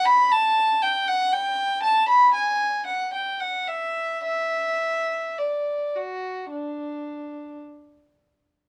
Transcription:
X:1
M:4/4
L:1/16
Q:1/4=55
K:D
V:1 name="Violin"
b a2 g f g2 a b ^g2 f =g f e2 | e4 d2 F2 D4 z4 |]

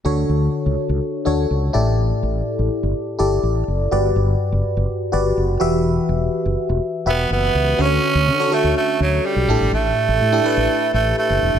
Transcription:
X:1
M:4/4
L:1/16
Q:1/4=124
K:D
V:1 name="FM electric piano"
[DFAc]6 z4 [DFAc]4 [EGAd]2- | [EGAd]4 z6 [EGAd]4- [EGAd] z | [FGBd]6 z4 [FGBd]4 [FGBe]2- | [FGBe]4 z6 [FGBe]4- [FGBe] z |
[CFABc]4 z [DFAc] [DFAc]6 z2 [DEGA]2- | [DEGA]4 z [DEGA] [DEGB]6 z4 |]
V:2 name="FM electric piano" clef=bass
D,6 z8 A,,2- | A,,4 z12 | G,,6 z8 E,2- | E,4 z12 |
D,6 z8 A,,2- | A,,4 z12 |]
V:3 name="Tenor saxophone"
z16 | z16 | z16 | z8 z2 B,2 B,4 |
C6 A,2 A,2 F,2 G,4 | A,8- A,2 A,2 A,4 |]
V:4 name="Fretless electric bass" clef=bass
D,,2 D,,2 z C,, z C,, z2 D,,2 C,,2 A,,,2- | A,,,2 A,,,2 z A,,, z G,,, z2 G,,,2 A,,,2 F,,,2 | G,,,2 G,,,2 z F,,, z F,,, z2 G,,,2 F,,,2 E,,,2- | E,,,2 E,,,2 z F,,, z E,,, z2 E,,,2 F,,,2 C,,2 |
D,,2 z D,, D,2 z D,, z2 D,,2 z B,,, A,,, G,,, | A,,,2 z A,,, A,,2 z A,,, z2 A,,,2 z F,,, E,,, F,,, |]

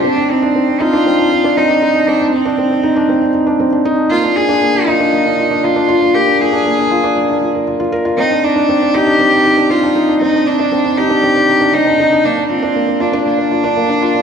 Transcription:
X:1
M:4/4
L:1/16
Q:1/4=118
K:Bbmix
V:1 name="Cello"
D2 C4 F6 E4 | D2 C8 z6 | F2 A4 E6 F4 | G2 A8 z6 |
E2 D4 G6 F4 | E2 D4 G6 E4 | D2 C4 D2 D8 |]
V:2 name="Felt piano"
C D E D C D E D C D E D C D E D | C D E D C D E D C D E D C D E D | B, D F D B, D F D B, D F D B, D F D | B, D F D B, D F D B, D F B F F B F |
C D E D C D E D C D E D C D E D | C D E D C D E D C D E D C D E D | B, D F D B, D F D B, D F D B, D F D |]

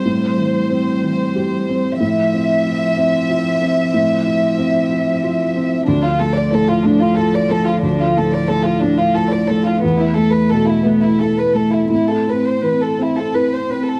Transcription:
X:1
M:6/8
L:1/16
Q:3/8=61
K:Am
V:1 name="Violin section"
c12 | e12- | e12 | D F A d A F D F A d A F |
D F A d A F D F A d A F | B, E A B A E B, E A B A E | E A B c B A E A B c B A |]
V:2 name="Felt piano"
[A,,C]2 E,2 C2 E,2 G2 C2 | A,,2 C2 E2 C2 F2 C2 | A,,2 E2 C2 E2 F2 C2 | D,,2 A,2 A,,2 A,2 F2 A,2 |
D,,2 A,,2 A,2 A,,2 F2 A,2 | E,,2 A,2 B,,2 A,2 E2 A,2 | A,,2 C2 E,2 C2 E2 C2 |]
V:3 name="Cello" clef=bass
G,12 | F,12- | F,12 | F,12- |
F,12 | A,12 | C8- C2 z2 |]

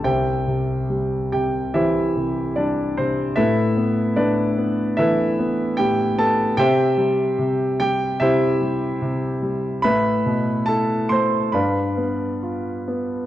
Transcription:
X:1
M:4/4
L:1/8
Q:1/4=73
K:C
V:1 name="Grand piano"
[Gceg]3 [Gg] [EGce]2 [Dd] [Cc] | [EABe]2 [DBd]2 [EABe]2 [Gg] [Aa] | [Gceg]3 [Gg] [EGce]4 | [Beb]2 [Aa] [cc'] [Bdfb]3 z |]
V:2 name="Grand piano" clef=bass
C,, C, G, C, E, C, G, C, | A,, B, A,, B, E, B, A,, B, | C, G, C, G, C, G, C, G, | A,, B,, E A, G,, B, F B, |]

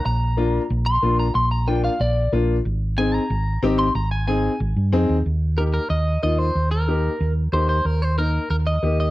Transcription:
X:1
M:4/4
L:1/8
Q:1/4=185
K:Eb
V:1 name="Clean electric guitar"
b4 z c'2 b | c' b g f d2 z2 | z2 a b4 c' | b a a2 z4 |
z2 B B e2 e c- | c B4 z c c | B c B2 B e2 e |]
V:2 name="Upright piano"
z2 [B,DF] z3 [B,DF] z | z2 [B,DF] z3 [B,DF] z | z2 [CEA] z3 [CEG] z | z2 [CEA] z3 [CEA] z |
z2 [B,EG] z3 [B,EF] z | z2 [B,EG] z3 [B,EG] z | z2 [B,EB] z3 [B,EG] z |]
V:3 name="Fingered electric bass" clef=bass
B,,,4 B,,,2 B,,,2 | B,,,4 B,,,2 B,,,2 | A,,,4 A,,,2 A,,,2 | A,,,4 A,,, G,, F,, E,, |
E,,4 E,,2 E,,2 | E,,4 E,,2 E,,2 | E,,4 E,,2 E,,2 |]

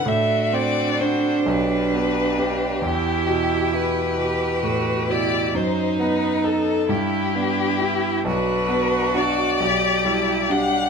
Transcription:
X:1
M:6/8
L:1/8
Q:3/8=44
K:G
V:1 name="Violin"
e d c B3 | G2 B3 d | c B A G3 | B2 d3 f |]
V:2 name="Violin"
F3 G3- | G6 | ^D3 E3 | D3 G3 |]
V:3 name="Cello"
D6 | E3 G F E | ^D3 E =D E | F3 G E D |]
V:4 name="Grand piano"
A,, C [DF] B,,, B, [DG] | E,, B,, E B,, A,, B,, | F,, B, [^DA] G,, B, [EG] | B,,, B, [DF] B,,, G, [DG] |]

